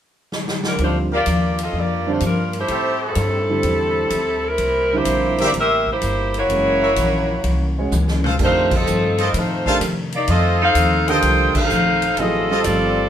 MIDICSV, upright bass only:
0, 0, Header, 1, 3, 480
1, 0, Start_track
1, 0, Tempo, 474308
1, 809, Time_signature, 4, 2, 24, 8
1, 13248, End_track
2, 0, Start_track
2, 0, Title_t, "Upright bass"
2, 0, Program_c, 0, 32
2, 797, Note_on_c, 0, 38, 72
2, 1268, Note_off_c, 0, 38, 0
2, 1279, Note_on_c, 0, 39, 77
2, 1746, Note_off_c, 0, 39, 0
2, 1752, Note_on_c, 0, 41, 74
2, 2226, Note_off_c, 0, 41, 0
2, 2236, Note_on_c, 0, 43, 83
2, 2708, Note_off_c, 0, 43, 0
2, 2717, Note_on_c, 0, 45, 70
2, 3189, Note_off_c, 0, 45, 0
2, 3197, Note_on_c, 0, 43, 83
2, 3669, Note_off_c, 0, 43, 0
2, 3677, Note_on_c, 0, 40, 75
2, 4149, Note_off_c, 0, 40, 0
2, 4155, Note_on_c, 0, 38, 82
2, 4629, Note_off_c, 0, 38, 0
2, 4637, Note_on_c, 0, 36, 74
2, 5109, Note_off_c, 0, 36, 0
2, 5118, Note_on_c, 0, 34, 86
2, 5590, Note_off_c, 0, 34, 0
2, 5601, Note_on_c, 0, 33, 78
2, 6072, Note_off_c, 0, 33, 0
2, 6089, Note_on_c, 0, 31, 83
2, 6556, Note_off_c, 0, 31, 0
2, 6567, Note_on_c, 0, 30, 70
2, 7035, Note_off_c, 0, 30, 0
2, 7047, Note_on_c, 0, 34, 88
2, 7515, Note_off_c, 0, 34, 0
2, 7527, Note_on_c, 0, 36, 78
2, 7995, Note_off_c, 0, 36, 0
2, 8011, Note_on_c, 0, 37, 83
2, 8477, Note_off_c, 0, 37, 0
2, 8491, Note_on_c, 0, 41, 77
2, 8957, Note_off_c, 0, 41, 0
2, 8971, Note_on_c, 0, 43, 86
2, 9437, Note_off_c, 0, 43, 0
2, 9448, Note_on_c, 0, 45, 81
2, 9915, Note_off_c, 0, 45, 0
2, 9925, Note_on_c, 0, 48, 85
2, 10393, Note_off_c, 0, 48, 0
2, 10402, Note_on_c, 0, 41, 76
2, 10872, Note_off_c, 0, 41, 0
2, 10878, Note_on_c, 0, 39, 86
2, 11349, Note_off_c, 0, 39, 0
2, 11360, Note_on_c, 0, 36, 88
2, 11668, Note_off_c, 0, 36, 0
2, 11838, Note_on_c, 0, 34, 84
2, 12309, Note_off_c, 0, 34, 0
2, 12318, Note_on_c, 0, 33, 72
2, 12789, Note_off_c, 0, 33, 0
2, 12799, Note_on_c, 0, 31, 92
2, 13248, Note_off_c, 0, 31, 0
2, 13248, End_track
3, 0, Start_track
3, 0, Title_t, "Muted upright bass strokes"
3, 11687, Note_on_c, 9, 29, 42
3, 11788, Note_off_c, 9, 29, 0
3, 13248, End_track
0, 0, End_of_file